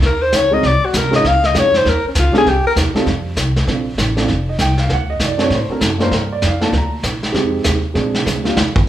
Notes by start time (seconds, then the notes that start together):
0.02 D#2, brush sweep, kick, snare
0.06 A#4
0.22 C5
0.32 C#2 C#5, kick, snare, hi-hat pedal
0.51 G#3 C4 D#4 F#4 A#4 D#5
0.63 C2 D5, brush sweep, kick, snare
0.85 F#4
0.93 D2 A#4, kick, snare, hi-hat pedal
1.03 C2
1.11 G#1 G#3 C#4 D#4 F4 A#4, snare
1.16 D#5
1.24 C#2 F5, brush sweep, kick, snare
1.44 D#5, snare
1.54 F2 G#3 C#4 D#4 F4 A#4, kick, snare, hi-hat pedal
1.59 C#5
1.74 C5, snare
1.85 D#2, brush sweep, kick, snare
1.89 A#4
2.04 C#4, muted upright bass stroke
2.15 C#2 F4, kick, snare, hi-hat pedal
2.32 G3 C4 D4 D#4 A4, muted upright bass stroke, snare
2.38 G#4
2.46 C2 G4, brush sweep, kick, snare
2.65 A#4, muted upright bass stroke
2.76 D#2, kick, snare, hi-hat pedal
2.93 G3 C4 D#4 F4 A4, muted upright bass stroke, snare
3.06 F2, brush sweep, kick, snare
3.36 C2, kick, snare, hi-hat pedal
3.56 snare
3.67 A#1 C4 D4 F4 A4, brush sweep, kick, snare
3.98 A1, kick, snare, hi-hat pedal
4.16 C4 D4 F4 A4, snare
4.28 F1, brush sweep, kick, snare
4.49 D#5
4.59 C2 G5, kick, snare, hi-hat pedal
4.78 F5, snare
4.89 D2, brush sweep, kick, snare
4.93 F#5
5.10 D#5
5.20 F#2, kick, snare, hi-hat pedal
5.25 D5
5.37 C4 D4 F#4 A4, snare
5.42 C#5
5.50 A2, brush sweep, kick, snare
5.55 C5
5.69 C4 D4 F#4 A4 A#4, muted upright bass stroke
5.81 F#2, kick, snare, hi-hat pedal
5.85 A4
5.98 A#3 D4 F4 A#4, snare
6.02 C5
6.11 G2 A#4, brush sweep, kick, snare
6.32 D5
6.42 F2, kick, snare, hi-hat pedal
6.46 F5
6.60 A#3 D4 F4 A4 A5, snare
6.72 D2, brush sweep, kick, snare
6.78 A#5
7.03 A#1, kick, snare, hi-hat pedal
7.23 snare
7.32 F2 G#3 C4 D#4 G4, brush sweep, kick, snare
7.64 D#2, kick, snare, hi-hat pedal
7.94 A#1 G#3 C4 D4 G#4, brush sweep, kick, snare
8.14 snare
8.26 D2, kick, snare, hi-hat pedal
8.43 G3 A#3 D4 F4, snare
8.57 D#2, snare
8.76 kick